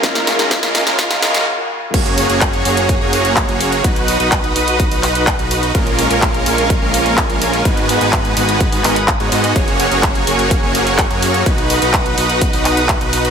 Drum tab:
CC |----------------|x---------------|----------------|----------------|
HH |xxoxxxoxxoox----|xxoxxxoxx-oxxxox|xxoxxxoxxooxxxox|xxoxxxoxx-oxxxox|
CP |----------------|----x-------x---|----x-----x-x---|----x-------x---|
SD |oooooooooooo----|----------------|----------------|----------------|
BD |o---o---o-------|o---o---o---o---|o---o---o---o---|o---o---o---o---|

CC |----------------|----------------|----------------|
HH |xxoxxxoxxooxxxox|xxoxxxoxx-oxxxox|xxoxxxoxxooxxxox|
CP |----x-----x-x---|----x-------x---|----x-----x-x---|
SD |----------------|----------------|----------------|
BD |o---o---o---o---|o---o---o---o---|o---o---o---o---|